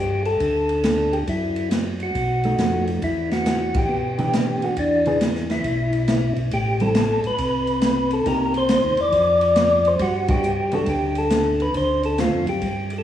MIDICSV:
0, 0, Header, 1, 5, 480
1, 0, Start_track
1, 0, Key_signature, 1, "major"
1, 0, Tempo, 436047
1, 1408, Time_signature, 4, 2, 24, 8
1, 14345, End_track
2, 0, Start_track
2, 0, Title_t, "Tonewheel organ"
2, 0, Program_c, 0, 16
2, 0, Note_on_c, 0, 67, 88
2, 252, Note_off_c, 0, 67, 0
2, 285, Note_on_c, 0, 69, 95
2, 1244, Note_on_c, 0, 67, 77
2, 1274, Note_off_c, 0, 69, 0
2, 1317, Note_off_c, 0, 67, 0
2, 1422, Note_on_c, 0, 64, 65
2, 1862, Note_off_c, 0, 64, 0
2, 2232, Note_on_c, 0, 66, 89
2, 3134, Note_off_c, 0, 66, 0
2, 3346, Note_on_c, 0, 64, 84
2, 3632, Note_off_c, 0, 64, 0
2, 3663, Note_on_c, 0, 66, 87
2, 4146, Note_on_c, 0, 67, 88
2, 4148, Note_off_c, 0, 66, 0
2, 5110, Note_on_c, 0, 66, 80
2, 5124, Note_off_c, 0, 67, 0
2, 5250, Note_off_c, 0, 66, 0
2, 5275, Note_on_c, 0, 62, 65
2, 5709, Note_off_c, 0, 62, 0
2, 6066, Note_on_c, 0, 64, 90
2, 6972, Note_off_c, 0, 64, 0
2, 7193, Note_on_c, 0, 67, 74
2, 7503, Note_on_c, 0, 69, 81
2, 7507, Note_off_c, 0, 67, 0
2, 7942, Note_off_c, 0, 69, 0
2, 8000, Note_on_c, 0, 71, 94
2, 8951, Note_on_c, 0, 69, 80
2, 8972, Note_off_c, 0, 71, 0
2, 9107, Note_off_c, 0, 69, 0
2, 9107, Note_on_c, 0, 70, 85
2, 9394, Note_off_c, 0, 70, 0
2, 9439, Note_on_c, 0, 72, 102
2, 9914, Note_on_c, 0, 74, 89
2, 9917, Note_off_c, 0, 72, 0
2, 10872, Note_on_c, 0, 72, 83
2, 10890, Note_off_c, 0, 74, 0
2, 11027, Note_on_c, 0, 66, 83
2, 11028, Note_off_c, 0, 72, 0
2, 11314, Note_off_c, 0, 66, 0
2, 11341, Note_on_c, 0, 67, 83
2, 11829, Note_off_c, 0, 67, 0
2, 11830, Note_on_c, 0, 69, 79
2, 11987, Note_off_c, 0, 69, 0
2, 11993, Note_on_c, 0, 67, 81
2, 12308, Note_off_c, 0, 67, 0
2, 12308, Note_on_c, 0, 69, 84
2, 12790, Note_on_c, 0, 71, 82
2, 12792, Note_off_c, 0, 69, 0
2, 12932, Note_off_c, 0, 71, 0
2, 12956, Note_on_c, 0, 72, 79
2, 13238, Note_off_c, 0, 72, 0
2, 13269, Note_on_c, 0, 69, 77
2, 13426, Note_off_c, 0, 69, 0
2, 13433, Note_on_c, 0, 65, 66
2, 13717, Note_off_c, 0, 65, 0
2, 13749, Note_on_c, 0, 67, 76
2, 14234, Note_off_c, 0, 67, 0
2, 14291, Note_on_c, 0, 69, 58
2, 14344, Note_off_c, 0, 69, 0
2, 14345, End_track
3, 0, Start_track
3, 0, Title_t, "Hollow-body jazz guitar"
3, 0, Program_c, 1, 26
3, 2698, Note_on_c, 1, 57, 54
3, 2703, Note_on_c, 1, 63, 60
3, 3302, Note_off_c, 1, 57, 0
3, 3305, Note_off_c, 1, 63, 0
3, 4608, Note_on_c, 1, 52, 68
3, 4617, Note_on_c, 1, 59, 65
3, 4622, Note_on_c, 1, 62, 73
3, 4622, Note_on_c, 1, 67, 71
3, 5217, Note_off_c, 1, 52, 0
3, 5222, Note_off_c, 1, 59, 0
3, 5225, Note_off_c, 1, 62, 0
3, 5225, Note_off_c, 1, 67, 0
3, 5576, Note_on_c, 1, 52, 61
3, 5582, Note_on_c, 1, 59, 60
3, 5585, Note_on_c, 1, 62, 56
3, 5586, Note_on_c, 1, 68, 61
3, 5718, Note_off_c, 1, 52, 0
3, 5721, Note_off_c, 1, 59, 0
3, 5723, Note_off_c, 1, 62, 0
3, 5723, Note_off_c, 1, 68, 0
3, 7498, Note_on_c, 1, 55, 61
3, 7505, Note_on_c, 1, 60, 57
3, 7513, Note_on_c, 1, 64, 64
3, 7639, Note_off_c, 1, 55, 0
3, 7643, Note_off_c, 1, 60, 0
3, 7647, Note_off_c, 1, 64, 0
3, 9093, Note_on_c, 1, 58, 45
3, 9097, Note_on_c, 1, 63, 50
3, 9108, Note_on_c, 1, 67, 50
3, 9377, Note_off_c, 1, 58, 0
3, 9379, Note_off_c, 1, 63, 0
3, 9384, Note_off_c, 1, 67, 0
3, 11324, Note_on_c, 1, 55, 53
3, 11332, Note_on_c, 1, 59, 62
3, 11334, Note_on_c, 1, 62, 60
3, 11334, Note_on_c, 1, 66, 60
3, 11473, Note_off_c, 1, 55, 0
3, 11477, Note_off_c, 1, 59, 0
3, 11478, Note_off_c, 1, 62, 0
3, 11478, Note_off_c, 1, 66, 0
3, 11808, Note_on_c, 1, 55, 60
3, 11813, Note_on_c, 1, 59, 68
3, 11817, Note_on_c, 1, 62, 68
3, 11824, Note_on_c, 1, 66, 71
3, 11955, Note_off_c, 1, 55, 0
3, 11958, Note_off_c, 1, 59, 0
3, 11959, Note_off_c, 1, 62, 0
3, 11963, Note_off_c, 1, 66, 0
3, 13417, Note_on_c, 1, 50, 50
3, 13422, Note_on_c, 1, 57, 54
3, 13423, Note_on_c, 1, 60, 56
3, 13429, Note_on_c, 1, 65, 61
3, 13698, Note_off_c, 1, 50, 0
3, 13701, Note_off_c, 1, 57, 0
3, 13702, Note_off_c, 1, 60, 0
3, 13704, Note_off_c, 1, 65, 0
3, 14345, End_track
4, 0, Start_track
4, 0, Title_t, "Tonewheel organ"
4, 0, Program_c, 2, 16
4, 0, Note_on_c, 2, 31, 76
4, 401, Note_off_c, 2, 31, 0
4, 441, Note_on_c, 2, 38, 77
4, 1361, Note_off_c, 2, 38, 0
4, 1404, Note_on_c, 2, 42, 77
4, 2322, Note_off_c, 2, 42, 0
4, 2366, Note_on_c, 2, 35, 78
4, 2814, Note_off_c, 2, 35, 0
4, 2835, Note_on_c, 2, 41, 68
4, 3287, Note_off_c, 2, 41, 0
4, 3325, Note_on_c, 2, 40, 77
4, 4243, Note_off_c, 2, 40, 0
4, 4278, Note_on_c, 2, 47, 77
4, 5036, Note_off_c, 2, 47, 0
4, 5079, Note_on_c, 2, 47, 37
4, 5162, Note_off_c, 2, 47, 0
4, 5247, Note_on_c, 2, 40, 78
4, 6165, Note_off_c, 2, 40, 0
4, 6215, Note_on_c, 2, 35, 76
4, 6965, Note_off_c, 2, 35, 0
4, 7008, Note_on_c, 2, 35, 63
4, 7159, Note_off_c, 2, 35, 0
4, 7173, Note_on_c, 2, 33, 80
4, 7924, Note_off_c, 2, 33, 0
4, 7964, Note_on_c, 2, 33, 37
4, 8046, Note_off_c, 2, 33, 0
4, 8128, Note_on_c, 2, 36, 81
4, 9046, Note_off_c, 2, 36, 0
4, 9090, Note_on_c, 2, 36, 79
4, 9686, Note_off_c, 2, 36, 0
4, 9724, Note_on_c, 2, 39, 58
4, 9876, Note_off_c, 2, 39, 0
4, 9886, Note_on_c, 2, 40, 63
4, 10037, Note_off_c, 2, 40, 0
4, 10043, Note_on_c, 2, 41, 80
4, 10963, Note_off_c, 2, 41, 0
4, 11000, Note_on_c, 2, 43, 81
4, 11922, Note_off_c, 2, 43, 0
4, 11960, Note_on_c, 2, 38, 80
4, 12881, Note_off_c, 2, 38, 0
4, 12930, Note_on_c, 2, 38, 80
4, 13526, Note_off_c, 2, 38, 0
4, 13568, Note_on_c, 2, 41, 55
4, 13718, Note_off_c, 2, 41, 0
4, 13729, Note_on_c, 2, 42, 65
4, 13878, Note_off_c, 2, 42, 0
4, 13891, Note_on_c, 2, 43, 76
4, 14345, Note_off_c, 2, 43, 0
4, 14345, End_track
5, 0, Start_track
5, 0, Title_t, "Drums"
5, 278, Note_on_c, 9, 51, 38
5, 388, Note_off_c, 9, 51, 0
5, 442, Note_on_c, 9, 51, 49
5, 446, Note_on_c, 9, 36, 29
5, 552, Note_off_c, 9, 51, 0
5, 556, Note_off_c, 9, 36, 0
5, 760, Note_on_c, 9, 51, 39
5, 870, Note_off_c, 9, 51, 0
5, 920, Note_on_c, 9, 44, 50
5, 920, Note_on_c, 9, 51, 61
5, 926, Note_on_c, 9, 38, 60
5, 1031, Note_off_c, 9, 44, 0
5, 1031, Note_off_c, 9, 51, 0
5, 1036, Note_off_c, 9, 38, 0
5, 1245, Note_on_c, 9, 51, 38
5, 1355, Note_off_c, 9, 51, 0
5, 1403, Note_on_c, 9, 51, 50
5, 1408, Note_on_c, 9, 36, 30
5, 1513, Note_off_c, 9, 51, 0
5, 1518, Note_off_c, 9, 36, 0
5, 1717, Note_on_c, 9, 51, 39
5, 1827, Note_off_c, 9, 51, 0
5, 1882, Note_on_c, 9, 44, 49
5, 1882, Note_on_c, 9, 51, 61
5, 1888, Note_on_c, 9, 38, 58
5, 1992, Note_off_c, 9, 44, 0
5, 1992, Note_off_c, 9, 51, 0
5, 1998, Note_off_c, 9, 38, 0
5, 2199, Note_on_c, 9, 51, 40
5, 2309, Note_off_c, 9, 51, 0
5, 2367, Note_on_c, 9, 51, 51
5, 2370, Note_on_c, 9, 36, 30
5, 2477, Note_off_c, 9, 51, 0
5, 2480, Note_off_c, 9, 36, 0
5, 2680, Note_on_c, 9, 51, 40
5, 2790, Note_off_c, 9, 51, 0
5, 2845, Note_on_c, 9, 44, 55
5, 2845, Note_on_c, 9, 51, 55
5, 2851, Note_on_c, 9, 38, 58
5, 2955, Note_off_c, 9, 44, 0
5, 2955, Note_off_c, 9, 51, 0
5, 2961, Note_off_c, 9, 38, 0
5, 3164, Note_on_c, 9, 51, 40
5, 3274, Note_off_c, 9, 51, 0
5, 3326, Note_on_c, 9, 51, 52
5, 3330, Note_on_c, 9, 36, 31
5, 3436, Note_off_c, 9, 51, 0
5, 3440, Note_off_c, 9, 36, 0
5, 3648, Note_on_c, 9, 51, 42
5, 3653, Note_on_c, 9, 38, 44
5, 3758, Note_off_c, 9, 51, 0
5, 3763, Note_off_c, 9, 38, 0
5, 3807, Note_on_c, 9, 44, 47
5, 3807, Note_on_c, 9, 51, 63
5, 3813, Note_on_c, 9, 38, 60
5, 3918, Note_off_c, 9, 44, 0
5, 3918, Note_off_c, 9, 51, 0
5, 3923, Note_off_c, 9, 38, 0
5, 4122, Note_on_c, 9, 51, 68
5, 4127, Note_on_c, 9, 36, 74
5, 4232, Note_off_c, 9, 51, 0
5, 4237, Note_off_c, 9, 36, 0
5, 4607, Note_on_c, 9, 51, 41
5, 4717, Note_off_c, 9, 51, 0
5, 4771, Note_on_c, 9, 44, 55
5, 4771, Note_on_c, 9, 51, 58
5, 4776, Note_on_c, 9, 38, 62
5, 4881, Note_off_c, 9, 44, 0
5, 4881, Note_off_c, 9, 51, 0
5, 4886, Note_off_c, 9, 38, 0
5, 5086, Note_on_c, 9, 51, 38
5, 5196, Note_off_c, 9, 51, 0
5, 5246, Note_on_c, 9, 51, 57
5, 5253, Note_on_c, 9, 36, 30
5, 5356, Note_off_c, 9, 51, 0
5, 5363, Note_off_c, 9, 36, 0
5, 5564, Note_on_c, 9, 51, 40
5, 5674, Note_off_c, 9, 51, 0
5, 5731, Note_on_c, 9, 44, 52
5, 5731, Note_on_c, 9, 51, 58
5, 5737, Note_on_c, 9, 38, 58
5, 5841, Note_off_c, 9, 44, 0
5, 5841, Note_off_c, 9, 51, 0
5, 5847, Note_off_c, 9, 38, 0
5, 5895, Note_on_c, 9, 38, 28
5, 6005, Note_off_c, 9, 38, 0
5, 6050, Note_on_c, 9, 51, 41
5, 6056, Note_on_c, 9, 38, 39
5, 6160, Note_off_c, 9, 51, 0
5, 6166, Note_off_c, 9, 38, 0
5, 6210, Note_on_c, 9, 51, 49
5, 6216, Note_on_c, 9, 36, 31
5, 6320, Note_off_c, 9, 51, 0
5, 6326, Note_off_c, 9, 36, 0
5, 6523, Note_on_c, 9, 51, 41
5, 6634, Note_off_c, 9, 51, 0
5, 6689, Note_on_c, 9, 44, 62
5, 6689, Note_on_c, 9, 51, 56
5, 6695, Note_on_c, 9, 38, 58
5, 6799, Note_off_c, 9, 44, 0
5, 6799, Note_off_c, 9, 51, 0
5, 6805, Note_off_c, 9, 38, 0
5, 7005, Note_on_c, 9, 51, 36
5, 7115, Note_off_c, 9, 51, 0
5, 7169, Note_on_c, 9, 51, 57
5, 7176, Note_on_c, 9, 36, 31
5, 7279, Note_off_c, 9, 51, 0
5, 7286, Note_off_c, 9, 36, 0
5, 7483, Note_on_c, 9, 51, 40
5, 7594, Note_off_c, 9, 51, 0
5, 7646, Note_on_c, 9, 44, 45
5, 7646, Note_on_c, 9, 51, 63
5, 7652, Note_on_c, 9, 38, 63
5, 7756, Note_off_c, 9, 44, 0
5, 7756, Note_off_c, 9, 51, 0
5, 7762, Note_off_c, 9, 38, 0
5, 7967, Note_on_c, 9, 51, 41
5, 8077, Note_off_c, 9, 51, 0
5, 8127, Note_on_c, 9, 51, 54
5, 8133, Note_on_c, 9, 36, 30
5, 8237, Note_off_c, 9, 51, 0
5, 8243, Note_off_c, 9, 36, 0
5, 8444, Note_on_c, 9, 51, 39
5, 8554, Note_off_c, 9, 51, 0
5, 8602, Note_on_c, 9, 44, 52
5, 8602, Note_on_c, 9, 51, 60
5, 8608, Note_on_c, 9, 38, 60
5, 8712, Note_off_c, 9, 44, 0
5, 8712, Note_off_c, 9, 51, 0
5, 8718, Note_off_c, 9, 38, 0
5, 8923, Note_on_c, 9, 51, 38
5, 9033, Note_off_c, 9, 51, 0
5, 9088, Note_on_c, 9, 51, 58
5, 9091, Note_on_c, 9, 36, 32
5, 9198, Note_off_c, 9, 51, 0
5, 9201, Note_off_c, 9, 36, 0
5, 9401, Note_on_c, 9, 51, 40
5, 9511, Note_off_c, 9, 51, 0
5, 9562, Note_on_c, 9, 44, 50
5, 9562, Note_on_c, 9, 51, 62
5, 9567, Note_on_c, 9, 38, 59
5, 9672, Note_off_c, 9, 44, 0
5, 9672, Note_off_c, 9, 51, 0
5, 9678, Note_off_c, 9, 38, 0
5, 9875, Note_on_c, 9, 51, 41
5, 9986, Note_off_c, 9, 51, 0
5, 10044, Note_on_c, 9, 51, 50
5, 10048, Note_on_c, 9, 36, 30
5, 10154, Note_off_c, 9, 51, 0
5, 10158, Note_off_c, 9, 36, 0
5, 10360, Note_on_c, 9, 51, 42
5, 10470, Note_off_c, 9, 51, 0
5, 10521, Note_on_c, 9, 44, 49
5, 10521, Note_on_c, 9, 51, 62
5, 10526, Note_on_c, 9, 38, 59
5, 10631, Note_off_c, 9, 44, 0
5, 10631, Note_off_c, 9, 51, 0
5, 10637, Note_off_c, 9, 38, 0
5, 10841, Note_on_c, 9, 51, 39
5, 10951, Note_off_c, 9, 51, 0
5, 11000, Note_on_c, 9, 51, 56
5, 11007, Note_on_c, 9, 36, 29
5, 11110, Note_off_c, 9, 51, 0
5, 11117, Note_off_c, 9, 36, 0
5, 11320, Note_on_c, 9, 51, 66
5, 11325, Note_on_c, 9, 36, 75
5, 11430, Note_off_c, 9, 51, 0
5, 11435, Note_off_c, 9, 36, 0
5, 11484, Note_on_c, 9, 44, 47
5, 11594, Note_off_c, 9, 44, 0
5, 11795, Note_on_c, 9, 51, 43
5, 11905, Note_off_c, 9, 51, 0
5, 11957, Note_on_c, 9, 51, 49
5, 11967, Note_on_c, 9, 36, 30
5, 12067, Note_off_c, 9, 51, 0
5, 12077, Note_off_c, 9, 36, 0
5, 12275, Note_on_c, 9, 51, 42
5, 12385, Note_off_c, 9, 51, 0
5, 12443, Note_on_c, 9, 44, 56
5, 12443, Note_on_c, 9, 51, 63
5, 12448, Note_on_c, 9, 38, 59
5, 12553, Note_off_c, 9, 44, 0
5, 12553, Note_off_c, 9, 51, 0
5, 12558, Note_off_c, 9, 38, 0
5, 12767, Note_on_c, 9, 51, 39
5, 12877, Note_off_c, 9, 51, 0
5, 12925, Note_on_c, 9, 51, 55
5, 12932, Note_on_c, 9, 36, 31
5, 13035, Note_off_c, 9, 51, 0
5, 13042, Note_off_c, 9, 36, 0
5, 13245, Note_on_c, 9, 51, 41
5, 13355, Note_off_c, 9, 51, 0
5, 13409, Note_on_c, 9, 44, 53
5, 13409, Note_on_c, 9, 51, 57
5, 13415, Note_on_c, 9, 38, 59
5, 13519, Note_off_c, 9, 44, 0
5, 13519, Note_off_c, 9, 51, 0
5, 13525, Note_off_c, 9, 38, 0
5, 13726, Note_on_c, 9, 51, 41
5, 13836, Note_off_c, 9, 51, 0
5, 13887, Note_on_c, 9, 51, 46
5, 13893, Note_on_c, 9, 36, 32
5, 13997, Note_off_c, 9, 51, 0
5, 14003, Note_off_c, 9, 36, 0
5, 14201, Note_on_c, 9, 51, 43
5, 14311, Note_off_c, 9, 51, 0
5, 14345, End_track
0, 0, End_of_file